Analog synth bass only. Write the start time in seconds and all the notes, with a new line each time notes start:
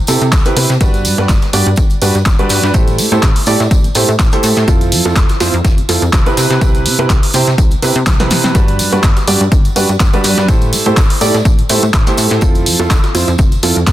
0.08 C3
0.22 C3
0.32 C2
0.57 C3
0.70 C3
0.81 G1
1.05 G2
1.18 G2
1.29 G1
1.53 G2
1.66 G2
1.77 G1
2.02 G2
2.15 G2
2.26 G1
2.50 G2
2.63 G2
2.74 A1
2.98 A2
3.12 A2
3.23 A1
3.47 A2
3.60 A2
3.71 A1
3.95 A2
4.09 A2
4.19 A1
4.44 A2
4.57 A2
4.68 F1
4.92 F2
5.05 F2
5.16 F1
5.40 F2
5.54 F2
5.65 F1
5.89 F2
6.02 F2
6.13 F1
6.37 C3
6.50 C3
6.61 C2
6.86 C3
6.99 C3
7.10 C2
7.34 C3
7.47 C3
7.58 C2
7.82 C3
7.96 C3
8.07 C2
8.31 C3
8.44 C3
8.55 G1
8.79 G2
8.92 G2
9.03 G1
9.28 G2
9.41 G2
9.52 G1
9.76 G2
9.89 G2
10.00 G1
10.24 G2
10.38 G2
10.49 A1
10.73 A2
10.86 A2
10.97 A1
11.21 A2
11.34 A2
11.45 A1
11.70 A2
11.83 A2
11.94 A1
12.18 A2
12.31 A2
12.42 F1
12.66 F2
12.79 F2
12.90 F1
13.15 F2
13.28 F2
13.39 F1
13.63 F2
13.76 F2
13.87 F1